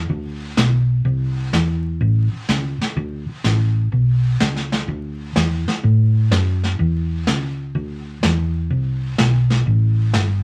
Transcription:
0.09 fingered electric bass D2, brush sweep, kick
0.57 fingered electric bass B1, snare, hi-hat pedal
1.05 fingered electric bass C2, brush sweep, kick
1.53 fingered electric bass E2, snare, hi-hat pedal
2.01 fingered electric bass A1, brush sweep, kick
2.33 muted fingered electric bass stroke
2.49 fingered electric bass C#2, snare, hi-hat pedal
2.81 muted fingered electric bass stroke, snare
2.96 fingered electric bass D2, brush sweep, kick
3.29 muted fingered electric bass stroke
3.44 fingered electric bass A1, snare, hi-hat pedal
3.92 fingered electric bass B1, brush sweep, kick
4.40 fingered electric bass C#2, snare, hi-hat pedal
4.56 snare
4.72 snare
4.88 fingered electric bass D2, brush sweep, kick
5.36 fingered electric bass E2, snare, hi-hat pedal
5.68 muted fingered electric bass stroke, snare
5.83 fingered electric bass A2, brush sweep, kick
6.31 fingered electric bass F#2, snare, hi-hat pedal
6.64 snare
6.79 fingered electric bass E2, brush sweep, kick
7.27 fingered electric bass C#2, snare, hi-hat pedal
7.75 fingered electric bass D2, brush sweep, kick
8.23 fingered electric bass E2, snare, hi-hat pedal
8.70 fingered electric bass C2, brush sweep, kick
9.18 fingered electric bass B1, snare, hi-hat pedal
9.50 snare
9.66 fingered electric bass A1, brush sweep, kick
10.14 fingered electric bass G1, snare, hi-hat pedal

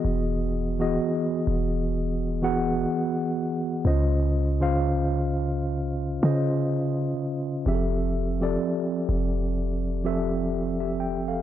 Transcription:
Already playing: tine electric piano E3 B3 F#4 G#4 D#5
0.05 808-style bass E1
0.79 808-style bass D#1, tine electric piano E3 B3 F#4 G#4 D#5
1.47 808-style bass E1
2.42 tine electric piano E3 B3 F#4 G#4 F#5
3.84 808-style bass C#2, tine electric piano C#3 C#4 F4 C5 D#5
4.60 tine electric piano C#3 C#4 F4 C5 F5
6.22 tine electric piano C#3 C#4 F4 C5 D#5, 808-style bass C#3
7.66 808-style bass F1, tine electric piano F3 C4 G4 G#4 E5
7.74 tine electric piano A4
8.41 tine electric piano F3 C4 G4 A4 D5
9.09 808-style bass F1
10.04 tine electric piano F3 C4 G4 A4 E5
10.80 tine electric piano G4 E5
11.00 tine electric piano G5
11.28 tine electric piano A4 F5

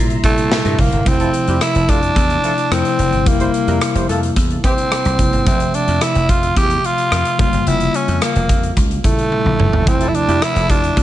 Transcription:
Already playing: slap bass A#2, tine electric piano C3 G3 A#3 E4, string machine E5 A#5 C6
0.10 closed hi-hat
0.23 tine electric piano A#2 C3 G3 E4, tenor saxophone A3, kick, closed hi-hat
0.38 closed hi-hat
0.52 snare
0.65 slap bass G2, closed hi-hat
0.79 slap bass F1, tenor saxophone A#3, kick, open hi-hat
0.92 slap bass G1, closed hi-hat
1.05 slap bass F1, tine electric piano C3 F3 A3 E4, tenor saxophone C4, kick, closed hi-hat
1.20 horn section F3 E4 A4, closed hi-hat
1.34 closed hi-hat
1.47 slap bass F2, horn section G3 E4 G4, closed hi-hat
1.61 tenor saxophone E4, cross-stick, closed hi-hat
1.75 slap bass F1, horn section F3 E4 A4, closed hi-hat
1.89 slap bass F2, horn section C3 A3 F4, tenor saxophone D4, kick, closed hi-hat
2.03 closed hi-hat
2.16 slap bass E2, kick, closed hi-hat
2.30 closed hi-hat
2.44 horn section F3 E4 A4, closed hi-hat
2.58 closed hi-hat
2.71 slap bass F2, tine electric piano C3 F3 A3 E4, tenor saxophone C4, cross-stick, closed hi-hat
2.85 closed hi-hat
2.99 slap bass F1, closed hi-hat
3.12 slap bass G1, closed hi-hat
3.25 slap bass F1, tine electric piano C3 G3 A#3 E4, tenor saxophone A#3, kick, closed hi-hat
3.40 horn section G3 E4 C5, closed hi-hat
3.54 closed hi-hat
3.67 slap bass F2, horn section G3 E4 A#4, closed hi-hat
3.81 cross-stick, closed hi-hat
3.95 slap bass F1, horn section G3 E4 C5, closed hi-hat
4.09 slap bass F2, horn section A3 F4 A4, closed hi-hat
4.23 closed hi-hat
4.36 slap bass E2, kick, closed hi-hat
4.50 closed hi-hat
4.64 horn section E3 C4 G4, tenor saxophone C4, kick, closed hi-hat
4.78 closed hi-hat
4.92 cross-stick, closed hi-hat
5.05 slap bass C2, closed hi-hat
5.18 slap bass F1, tine electric piano C3 G3 A#3 E4, kick, closed hi-hat
5.33 slap bass G1, closed hi-hat
5.46 slap bass F1, tine electric piano C3 F3 A3 E5, tenor saxophone C4, kick, closed hi-hat
5.60 closed hi-hat
5.74 tenor saxophone D4, closed hi-hat
5.88 slap bass F2, closed hi-hat
6.01 tenor saxophone E4, cross-stick, closed hi-hat
6.15 slap bass F1, closed hi-hat
6.29 slap bass F2, tenor saxophone F4, kick, closed hi-hat
6.43 closed hi-hat
6.56 slap bass E2, tenor saxophone G4, kick, closed hi-hat
6.70 closed hi-hat
6.84 tenor saxophone F4, closed hi-hat
6.98 closed hi-hat
7.12 slap bass F2, cross-stick, closed hi-hat
7.25 closed hi-hat
7.38 slap bass F1, tine electric piano C#3 G3 A#3 F4, tenor saxophone F4, kick, closed hi-hat
7.53 slap bass G1, closed hi-hat
7.67 slap bass F1, tenor saxophone E4, closed hi-hat
7.80 closed hi-hat
7.94 tenor saxophone C#4, closed hi-hat
8.08 slap bass F2, closed hi-hat
8.22 tenor saxophone A#3, cross-stick, closed hi-hat
8.36 slap bass F1, closed hi-hat
8.49 slap bass F2, kick, closed hi-hat
8.63 closed hi-hat
8.77 slap bass C#2, kick, closed hi-hat
8.91 closed hi-hat
9.04 tine electric piano A#2 C#3 G3 E4, tenor saxophone A3, kick, closed hi-hat
9.18 closed hi-hat
9.32 high tom
9.46 slap bass A#1
9.59 slap bass F1, mid tom
9.73 slap bass G1, floor tom
9.86 slap bass F1, tine electric piano C3 F3 A3 E4, tenor saxophone C4, kick, closed hi-hat
10.01 horn section F3 E4 A4, closed hi-hat
10.09 tenor saxophone E4
10.15 tenor saxophone D4, closed hi-hat
10.28 slap bass F2, horn section G3 E4 G4, closed hi-hat
10.42 tenor saxophone E4, cross-stick, closed hi-hat
10.56 slap bass F1, horn section F3 E4 A4, closed hi-hat
10.69 slap bass F2, horn section C3 A3 F4, tenor saxophone D4, kick, closed hi-hat
10.84 closed hi-hat
10.97 slap bass E2, kick, closed hi-hat

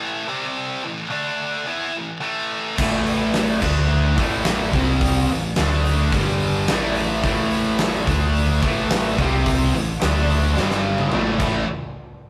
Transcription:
Already playing: distorted electric guitar A2 E3 A3
0.28 distorted electric guitar C3 G3 C4
0.83 distorted electric guitar A2 E3
1.10 distorted electric guitar D3 A3 D4
1.66 distorted electric guitar E3 B3 E4
1.93 distorted electric guitar A2 E3
2.20 distorted electric guitar A2 E3 A3
2.76 picked electric bass A1, distorted electric guitar A2 E3 A3, kick, crash
3.06 open hi-hat
3.34 snare, open hi-hat
3.61 picked electric bass D2, distorted electric guitar D3 A3 D4, kick, crash
4.16 picked electric bass A1, distorted electric guitar A2 E3 A3, kick, open hi-hat
4.45 snare, open hi-hat
4.73 picked electric bass C2, distorted electric guitar C3 G3 C4, kick, open hi-hat
5.01 kick, open hi-hat
5.28 picked electric bass A1, distorted electric guitar A2 E3, open hi-hat
5.56 picked electric bass D2, distorted electric guitar D3 A3 D4, snare, open hi-hat
5.72 snare
5.85 open hi-hat
6.12 picked electric bass G1, distorted electric guitar G2 D3 G3, kick, open hi-hat
6.40 open hi-hat
6.68 picked electric bass A1, distorted electric guitar A2 E3 A3, snare, open hi-hat
6.96 open hi-hat
7.23 picked electric bass A1, distorted electric guitar A2 E3 A3, kick, open hi-hat
7.51 open hi-hat
7.79 snare, open hi-hat
7.94 snare
8.06 picked electric bass D2, distorted electric guitar D3 A3 D4, kick, open hi-hat
8.35 open hi-hat
8.61 picked electric bass A1, distorted electric guitar A2 E3 A3, kick, open hi-hat
8.90 snare, open hi-hat
9.17 picked electric bass C2, distorted electric guitar C3 G3 C4, kick, open hi-hat
9.46 kick, open hi-hat
9.73 picked electric bass A1, distorted electric guitar A2 E3, open hi-hat
10.01 picked electric bass D2, distorted electric guitar D3 A3 D4, snare, open hi-hat
10.17 snare
10.29 open hi-hat
10.57 picked electric bass G1, distorted electric guitar G2 D3 G3, snare
10.71 snare
10.98 high tom
11.12 picked electric bass A1, distorted electric guitar A2 E3 A3, mid tom
11.39 picked electric bass A1, distorted electric guitar A2 E3 A3 C#4 E4, kick, crash

